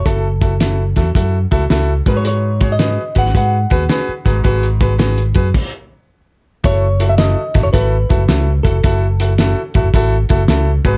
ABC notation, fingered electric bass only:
X:1
M:4/4
L:1/16
Q:"Swing" 1/4=109
K:F#dor
V:1 name="Fingered electric bass" clef=bass
F,,,6 E,,2 F,,2 C,,2 C,,2 G,,2- | G,,6 G,,,2 G,,2 D,,2 z2 G,,,2 | G,,,6 F,,2 z8 | F,,,4- F,,, z G,,, F,,, G,,,2 F,,,2 C,,2 ^E,,,2 |
F,,,4- F,,, z G,,, F,,, G,,,2 F,,,2 C,,2 G,,,2 |]